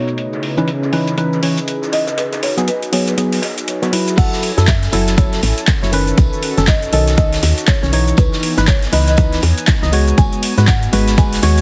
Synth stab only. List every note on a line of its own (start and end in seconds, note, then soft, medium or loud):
0.57 0.69 E3 medium
0.57 0.70 C#4 medium
0.57 0.70 D#4 medium
0.57 0.70 B4 loud
0.92 1.15 E3 medium
0.92 1.15 C#4 medium
0.92 1.15 D#4 medium
0.92 1.16 B4 loud
1.17 1.40 E3 loud
1.17 1.40 C#4 medium
1.17 1.40 D#4 medium
1.17 1.40 B4 loud
1.42 1.59 E3 medium
1.42 1.59 C#4 medium
1.42 1.59 D#4 medium
1.42 1.59 C#5 medium
2.57 2.69 F#3 medium
2.57 2.70 B3 medium
2.57 2.70 G#4 loud
2.92 3.15 F#3 medium
2.92 3.15 B3 medium
2.92 3.15 G#4 loud
3.17 3.40 F#3 medium
3.17 3.40 B3 medium
3.17 3.40 G#4 loud
3.82 3.91 F#3 medium
3.82 3.91 B3 medium
3.82 3.91 C#5 medium
3.92 4.16 F#3 medium
3.92 4.16 E4 medium
3.92 4.43 B4 loud
4.17 4.51 F#3 loud
4.17 4.52 E4 loud
4.17 4.52 A4 loud
4.57 4.69 F#3 medium
4.57 4.70 E4 medium
4.57 4.70 A4 loud
4.92 5.15 F#3 loud
4.92 5.15 E4 medium
4.92 5.15 A4 loud
5.17 5.40 F#3 loud
5.17 5.40 E4 medium
5.17 5.41 A4 loud
5.82 5.91 F#3 medium
5.82 5.91 E4 medium
5.82 5.91 C#5 medium
5.92 6.54 D#3 loud
5.92 6.54 C#4 medium
5.92 6.54 B4 loud
6.57 6.69 D#3 loud
6.57 6.70 C#4 medium
6.57 6.70 A4 loud
6.93 7.15 D#3 loud
6.93 7.15 C#4 medium
6.93 7.16 A4 loud
7.17 7.40 D#3 loud
7.17 7.41 A4 loud
7.82 7.91 D#3 medium
7.82 7.91 C#4 medium
7.82 7.91 C#5 medium
7.92 8.54 E3 medium
7.92 8.54 D#4 medium
7.92 8.54 C#5 loud
8.57 8.69 E3 loud
8.57 8.70 D#4 medium
8.57 8.70 B4 loud
8.92 9.15 E3 loud
8.92 9.15 D#4 medium
8.92 9.15 B4 loud
9.17 9.40 E3 loud
9.17 9.40 D#4 medium
9.17 9.40 B4 loud
9.82 9.91 E3 medium
9.82 9.91 D#4 medium
9.82 9.91 D#5 medium
9.92 10.54 G#3 medium
9.92 10.54 F#4 medium
9.92 10.54 C#5 loud
10.57 10.70 G#3 medium
10.57 10.70 F#4 medium
10.57 10.70 B4 loud
10.92 11.15 G#3 loud
10.92 11.15 F#4 medium
10.92 11.16 B4 loud
11.17 11.40 G#3 loud
11.17 11.40 F#4 medium
11.17 11.41 B4 loud
11.42 11.61 G#3 loud
11.42 11.61 F#4 medium
11.42 11.61 C#5 loud